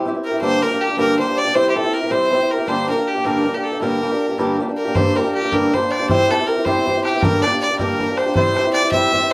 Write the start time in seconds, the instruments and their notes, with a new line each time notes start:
0.05 steel-string acoustic guitar G3 C4 E4 G4
0.14 steel-string acoustic guitar C4 E4 G4
0.24 fiddle A#4, accordion A#4
0.31 steel-string acoustic guitar C4 E4 G4
0.41 steel-string acoustic guitar G2 D3 G3 A#3 D4 G4, fiddle C5, accordion C5
0.62 steel-string acoustic guitar G3 A#3 D4 G4, fiddle A#4, accordion A#4
0.71 steel-string acoustic guitar G3 A#3 D4 G4
0.80 accordion G4, fiddle G4
0.89 steel-string acoustic guitar G3 A#3 D4 G4
0.97 steel-string acoustic guitar G2 D3 G3 A#3 D4 G4, accordion A#4, fiddle A#4
1.18 steel-string acoustic guitar G3 A#3 D4 G4, accordion C5, fiddle C5
1.27 steel-string acoustic guitar G3 A#3 D4 G4
1.36 accordion D5, fiddle D5
1.44 steel-string acoustic guitar G3 A#3 D4 G4
1.54 steel-string acoustic guitar C3 G3 C4 E4 G4, accordion C5, fiddle C5
1.70 fiddle G4
1.75 steel-string acoustic guitar G3 C4 E4 G4, fiddle A4, accordion A4
1.84 steel-string acoustic guitar C4 E4 G4
1.93 fiddle A#4, accordion A#4
2.01 steel-string acoustic guitar C4 E4 G4
2.10 steel-string acoustic guitar C3 G3 C4 E4 G4, accordion C5, fiddle C5
2.31 steel-string acoustic guitar G3 C4 E4 G4
2.40 steel-string acoustic guitar C4 E4 G4
2.50 accordion A#4, fiddle A#4
2.58 steel-string acoustic guitar C4 E4 G4
2.67 steel-string acoustic guitar G2 D3 G3 A#3 D4 G4, accordion C5, fiddle C5
2.88 steel-string acoustic guitar G3 A#3 D4 G4, fiddle A#4, accordion A#4
2.96 steel-string acoustic guitar G3 A#3 D4 G4
3.07 accordion G4, fiddle G4
3.15 steel-string acoustic guitar G3 A#3 D4 G4
3.24 steel-string acoustic guitar G2 D3 G3 A#3 D4 G4, fiddle A#4, accordion A#4
3.45 steel-string acoustic guitar G3 A#3 D4 G4
3.54 steel-string acoustic guitar G3 A#3 D4 G4, fiddle G4, accordion G4
3.63 fiddle A4, accordion A4
3.72 steel-string acoustic guitar G3 A#3 D4 G4
3.80 steel-string acoustic guitar G2 D3 G3 A#3 D4 G4, fiddle A#4, accordion A#4
4.01 steel-string acoustic guitar G3 A#3 D4 G4
4.11 steel-string acoustic guitar G3 A#3 D4 G4
4.29 steel-string acoustic guitar G3 A#3 D4 G4
4.38 steel-string acoustic guitar G2 D3 G3 A#3 D4 G4
4.59 steel-string acoustic guitar G3 A#3 D4 G4
4.68 steel-string acoustic guitar G3 A#3 D4 G4
4.77 fiddle A#4, accordion A#4
4.85 steel-string acoustic guitar G3 A#3 D4 G4
4.94 steel-string acoustic guitar G2 D3 G3 A#3 D4 G4, fiddle C5, accordion C5, bodhran
5.16 steel-string acoustic guitar G3 A#3 D4 G4, accordion A#4, fiddle A#4
5.24 steel-string acoustic guitar G3 A#3 D4 G4
5.35 fiddle G4
5.42 steel-string acoustic guitar G3 A#3 D4 G4
5.52 steel-string acoustic guitar G2 D3 G3 A#3 D4 G4, fiddle A#4, accordion A#4, bodhran
5.73 steel-string acoustic guitar G3 A#3 D4 G4, fiddle C5, accordion C5, bodhran
5.82 steel-string acoustic guitar G3 A#3 D4 G4
5.91 fiddle D5, bodhran
6.00 steel-string acoustic guitar G3 A#3 D4 G4
6.05 steel-string acoustic guitar C3, fiddle C5, accordion C5 D5
6.09 steel-string acoustic guitar G3 C4 E4 G4, bodhran
6.29 steel-string acoustic guitar G3 C4 E4 G4, accordion A4, fiddle A4, bodhran
6.39 steel-string acoustic guitar C4 E4 G4
6.47 accordion A#4, fiddle A#4
6.56 steel-string acoustic guitar C4 E4 G4
6.65 steel-string acoustic guitar C3 G3 C4 E4 G4, fiddle C5, accordion C5, bodhran
6.86 steel-string acoustic guitar G3 C4 E4 G4, bodhran
6.95 steel-string acoustic guitar C4 E4 G4
7.04 fiddle G4, accordion G4, bodhran
7.13 steel-string acoustic guitar C4 E4 G4
7.21 steel-string acoustic guitar G2 D3 G3 A#3 D4 G4, fiddle A#4, accordion A#4, bodhran
7.42 steel-string acoustic guitar G3 A#3 D4, fiddle D5, accordion D5, bodhran
7.47 steel-string acoustic guitar G4
7.52 steel-string acoustic guitar G3 A#3 D4 G4
7.60 fiddle D5, accordion D5
7.70 steel-string acoustic guitar G3 A#3 D4 G4
7.78 steel-string acoustic guitar G2 D3 G3 A#3 D4 G4, accordion A#4, fiddle A#4, bodhran
7.99 steel-string acoustic guitar G3 A#3 D4 G4, bodhran
8.08 steel-string acoustic guitar G3 A#3 D4 G4
8.17 accordion C5, fiddle C5, bodhran
8.26 steel-string acoustic guitar G3 A#3 D4 G4
8.35 steel-string acoustic guitar C3 G3 C4 E4 G4, fiddle C5, accordion C5, bodhran
8.56 steel-string acoustic guitar G3 C4 E4 G4, bodhran
8.64 steel-string acoustic guitar C4 E4 G4
8.73 fiddle D5, bodhran
8.82 steel-string acoustic guitar C4 E4 G4
8.92 steel-string acoustic guitar C3 G3 C4 E4 G4, fiddle E5, accordion E5, bodhran
9.12 steel-string acoustic guitar G3 C4 E4 G4, bodhran
9.21 steel-string acoustic guitar C4 E4 G4